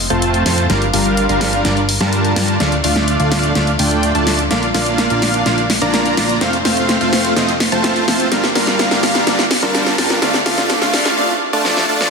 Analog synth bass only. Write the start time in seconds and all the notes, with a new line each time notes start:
0.10 F1
0.46 F2
0.70 G1
0.94 G1
1.29 G1
1.65 G1
2.01 G2
2.36 G2
2.60 D2
2.84 D2
3.20 D2
3.55 D2
3.79 D2
4.15 D2
4.51 A#1
4.74 A#1
5.10 A#1
5.46 A#1
5.82 A#1
6.18 A#1
6.41 F1
6.65 F1
7.01 F1
7.36 F1
7.72 F1
8.08 F1
8.32 G1
8.55 G1
8.91 G1
9.27 G1
9.63 G1
9.98 G2
10.22 D2
10.46 D2
10.82 D2